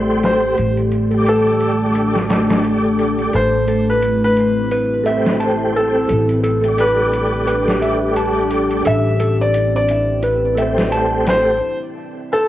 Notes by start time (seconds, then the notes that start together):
Already playing: A1 A3 E4 G4 C5
0.23 C5, snare, closed hi-hat
0.58 A1 D4, closed hi-hat
0.77 closed hi-hat
0.92 closed hi-hat
1.10 A3 G4, closed hi-hat
1.17 D5
1.26 A4, closed hi-hat
1.60 closed hi-hat
1.95 closed hi-hat
2.16 snare
2.30 snare, closed hi-hat
2.50 snare, closed hi-hat
2.64 closed hi-hat
2.99 closed hi-hat
3.19 closed hi-hat
3.33 A1 C4 E4 G4 A4 C5, closed hi-hat
3.68 A4, closed hi-hat
3.90 B4
4.02 closed hi-hat
4.24 B4
4.37 closed hi-hat
4.71 B4, closed hi-hat
5.03 A3 G4 E5, closed hi-hat
5.11 C4
5.26 snare
5.40 A5, closed hi-hat
5.76 A4
6.09 A1 D4 G4 A4, closed hi-hat
6.29 closed hi-hat
6.44 A4, closed hi-hat
6.61 A3 G4, closed hi-hat
6.68 D5
6.78 B4, closed hi-hat
7.13 closed hi-hat
7.47 B4, closed hi-hat
7.68 snare
7.82 E5, closed hi-hat
8.16 A5, closed hi-hat
8.51 closed hi-hat
8.71 closed hi-hat
8.85 A1 C4 E4 A4 E5, closed hi-hat
9.20 A4, closed hi-hat
9.41 D5
9.54 closed hi-hat
9.76 D5
9.88 closed hi-hat
10.23 B4, closed hi-hat
10.55 A3 G4 E5, closed hi-hat
10.62 C4
10.78 snare
10.92 A5, closed hi-hat
11.26 C5, snare, closed hi-hat
12.33 A4